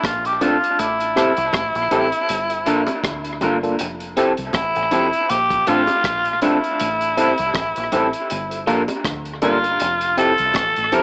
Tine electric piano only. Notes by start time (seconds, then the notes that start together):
0.41 C4 D4 F4 A4
1.16 C4 E4 G4 A4
1.91 C4 E4 G4 A4
2.50 F4 A4
2.66 A#3 D4 F4 A4
3.42 A#3 D4 F4 A4
3.63 A#3 D4 F4 A4
4.17 C4 E4 G4 A4
4.92 C4 E4 G4 A4
5.51 F4 A4
5.67 C4 D4 F4 A4
6.42 C4 D4 F4 A4
7.17 C4 E4 G4 A4
7.93 C4 E4 G4 A4
8.51 F4 A4
8.67 A#3 D4 F4 A4
9.42 A#3 D4 F4 A4
10.17 C4 E4 G4 A4
10.92 C4 E4 G4 A4